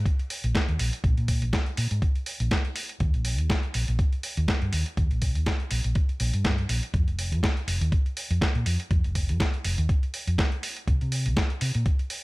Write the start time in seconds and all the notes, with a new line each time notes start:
0.06 kick, closed hi-hat
0.19 closed hi-hat
0.30 open hi-hat
0.44 A#1, closed hi-hat
0.55 kick, snare, closed hi-hat
0.68 D#2, closed hi-hat
0.79 A#1, open hi-hat
0.93 closed hi-hat
1.04 A#1, kick, closed hi-hat
1.18 A#2, closed hi-hat
1.28 kick, open hi-hat
1.42 A#1, closed hi-hat
1.53 kick, snare, closed hi-hat
1.66 closed hi-hat
1.77 A#2, open hi-hat
1.91 G#2, closed hi-hat
2.02 kick, closed hi-hat
2.15 closed hi-hat
2.26 open hi-hat
2.40 A#1, closed hi-hat
2.51 kick, snare, closed hi-hat
2.65 closed hi-hat
2.76 open hi-hat
2.89 closed hi-hat
3.00 D#2, kick, closed hi-hat
3.14 A#1, closed hi-hat
3.25 open hi-hat
3.38 D#2, closed hi-hat
3.50 kick, snare, closed hi-hat
3.63 closed hi-hat
3.74 A#1, open hi-hat
3.88 A#1, closed hi-hat
3.99 kick, closed hi-hat
4.13 closed hi-hat
4.23 open hi-hat
4.37 D#2, closed hi-hat
4.48 kick, snare, closed hi-hat
4.62 G2, closed hi-hat
4.73 D#2, open hi-hat
4.86 closed hi-hat
4.97 D#2, kick, closed hi-hat
5.11 A#1, closed hi-hat
5.22 kick, open hi-hat
5.35 D#2, closed hi-hat
5.46 kick, snare, closed hi-hat
5.60 closed hi-hat
5.71 A#1, open hi-hat
5.84 A#1, closed hi-hat
5.95 kick, closed hi-hat
6.09 closed hi-hat
6.20 A#1, open hi-hat
6.34 G2, closed hi-hat
6.45 kick, snare, closed hi-hat
6.58 closed hi-hat
6.69 A#1, open hi-hat
6.83 closed hi-hat
6.94 F2, kick, closed hi-hat
7.07 F1, closed hi-hat
7.19 open hi-hat
7.32 F2, closed hi-hat
7.43 kick, snare, closed hi-hat
7.57 closed hi-hat
7.67 F1, open hi-hat
7.81 D#2, closed hi-hat
7.92 kick, closed hi-hat
8.06 closed hi-hat
8.17 open hi-hat
8.31 F2, closed hi-hat
8.41 kick, snare, closed hi-hat
8.55 A#2, closed hi-hat
8.66 F2, open hi-hat
8.80 closed hi-hat
8.91 F2, kick, closed hi-hat
9.04 F1, closed hi-hat
9.15 kick, open hi-hat
9.29 F2, closed hi-hat
9.40 kick, snare, closed hi-hat
9.54 closed hi-hat
9.64 F1, open hi-hat
9.78 D#2, closed hi-hat
9.89 kick, closed hi-hat
10.03 closed hi-hat
10.14 open hi-hat
10.27 F2, closed hi-hat
10.38 kick, snare, closed hi-hat
10.52 closed hi-hat
10.63 open hi-hat
10.77 closed hi-hat
10.87 C2, kick, closed hi-hat
11.01 C3, closed hi-hat
11.12 open hi-hat
11.26 C2, closed hi-hat
11.37 kick, snare, closed hi-hat
11.50 closed hi-hat
11.61 C3, open hi-hat
11.75 A#2, closed hi-hat
11.86 kick, closed hi-hat
11.99 closed hi-hat
12.10 open hi-hat